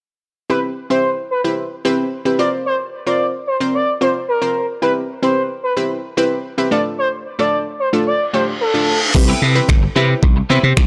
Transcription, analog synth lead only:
0.50 B4
0.90 C5
1.31 B4
2.39 D5
2.66 C5
3.07 D5
3.47 C5
3.74 D5
4.01 C5
4.28 A#4
4.82 B4
5.23 C5
5.63 B4
6.71 D5
6.99 C5
7.39 D5
7.80 C5
8.07 D5
8.34 C5
8.61 A4

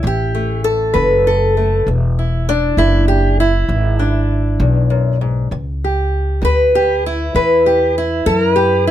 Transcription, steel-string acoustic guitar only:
Already playing: E4
0.03 A2
0.07 G4
0.35 A3
0.64 A4
0.94 E3 B4
1.27 A4
1.57 A3
1.88 E2
2.19 E4
2.49 D4
2.78 E3 E4
3.08 G4
3.40 E4
3.69 E2
3.99 D4
4.60 E2
4.90 F#2
5.21 G#2
5.52 A2
5.84 G4
6.42 E3 B4
6.75 G4
7.06 E4
7.36 A2 B4
7.66 G4
7.98 E4
8.26 E3 A4
8.37 A#4
8.56 G4 B4
8.87 E4

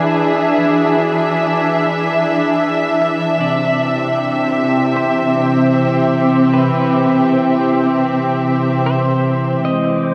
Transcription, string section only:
Already playing: E3 D4 G#4 E5
3.43 C3
3.91 G4
4.46 C4
9.66 G#3

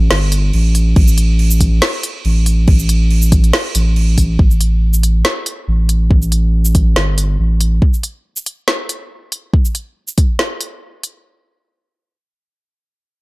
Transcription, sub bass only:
0.11 G1
0.53 A1
0.96 A1
2.25 A1
3.75 A1
4.39 A1
5.68 A1
6.96 G1
7.39 A1

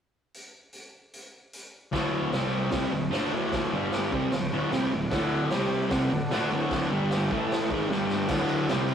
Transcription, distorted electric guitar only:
1.92 D2 A2 D3
2.33 C3 G3 C4
2.71 C3 G3 C4
2.92 D2 A2
3.11 D3 A3 D4
3.32 D2 A2 D3
3.72 G2 D3 G3
4.12 C3 G3 C4
4.32 D2 A2
4.52 D2 A2 D3
4.72 C3 G3 C4
4.93 D2 A2
5.11 D2 A2 D3
5.51 C3 G3 C4
5.90 C3 G3 C4
6.11 D2 A2
6.31 D3 A3 D4
6.52 D2 A2 D3
6.91 G2 D3 G3
7.32 A2 E3 A3
7.70 G#2 D#3 G#3
7.90 G2 D3 G3
8.28 D2 A2 D3
8.69 C3 G3 C4

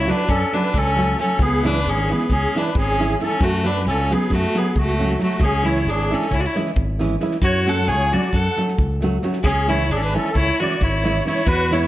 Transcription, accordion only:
0.07 B4
0.31 A4
0.53 B4
0.75 A4
1.21 A4
1.41 G#4
1.66 B4
1.88 G#4
2.12 G#4
2.32 G#4
2.57 B4
2.78 G#4
3.22 A4
3.41 F#4
3.64 B4
3.88 A4
4.12 G#4
4.33 F#4
4.56 G#4
4.78 F#4
5.22 F#4
5.42 G#4
5.66 C#5
5.88 G#4
6.10 A4
6.31 C#5
6.39 D5
6.45 C#5
7.43 C#5
7.67 F#5
7.88 C#5
8.12 D5
8.35 F#5
9.44 G#4
9.68 C#5
9.91 G#4
9.95 A4
10.04 B4
10.16 A4
10.35 C#5
10.61 D5
10.82 C#5
11.27 C#5
11.47 B4
11.72 C#5

